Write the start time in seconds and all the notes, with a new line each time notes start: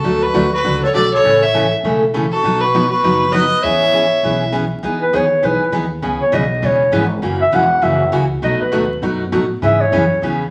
Already playing: F#4 A4
0.04 D2 D3 F#3 A3 D4 F#4
0.23 F#4 B4
0.34 D2 D3 F#3 A3 D4 F#4
0.53 F#4 B4
0.64 C#2 D3 F#3 A3 D4 F#4
0.83 A4 C#5
0.94 B1 D3 F#3 A3 D4 F#4 A4 D5
1.13 A4 C#5
1.24 A1 C#3 E3 A3 C#4 A4
1.42 C#5 E5
1.54 C#3 E3 A3 C#4 A4
1.83 E1 C#3 E3 A3 C#4 A4
2.14 C#3 E3 A3 C#4 A4
2.32 F#4 A4
2.43 B1 B2 F#3 B3 D#4 F#4
2.61 F#4 B4
2.74 B2 F#3 B3 D#4 F#4
2.90 F#4 B4
3.03 F#1 B2 F#3 B3 D#4 F#4
3.32 B2 F#3 B3 D#4 F#4 B4 D#5
3.62 E2 E3 B3 C#4 G#4 C#5 E5
3.93 E3 B3 C#4 G#4
4.23 B1 E3 B3 C#4 G#4
4.52 E3 B3 C#4 G#4
4.83 E2 E3 B3 D#4 G#4
5.02 B4
5.13 D#2 E3 B3 D#4 G#4 C#5
5.42 B1 E3 B3 D#4 G#4 B4
5.61 muted upright bass stroke
5.72 D#2 E3 B3 D#4 G#4
6.02 C#2 C#3 E3 B3 C#4 G#4
6.21 C#5, muted upright bass stroke
6.32 B1 C#3 E3 B3 C#4 G#4 D#5
6.62 E1 C#3 E3 B3 C#4 G#4 C#5
6.92 G#1 C#3 E3 B3 C#4 G#4
7.22 F#1 C#3 E3 A#3 C#4 F#4
7.42 E5
7.52 E1 C#3 E3 A#3 C#4 F#4 F#5
7.82 F#1 C#3 E3 A#3 C#4 F#4 E5
8.12 C#2 C#3 E3 A#3 C#4 F#4
8.42 B1 B2 F#3 A3 D#4 F#4 D#5
8.60 B4, muted upright bass stroke
8.72 D#2 B2 F#3 A3 D#4 F#4
9.02 F#2 B2 F#3 A3 D#4 F#4
9.32 A2 B2 F#3 A3 D#4 F#4
9.62 G#2 C#3 E3 B3 C#4 G#4 E5
9.81 C#5
9.92 F#2 C#3 E3 B3 C#4 G#4
10.22 E2 C#3 E3 B3 C#4 G#4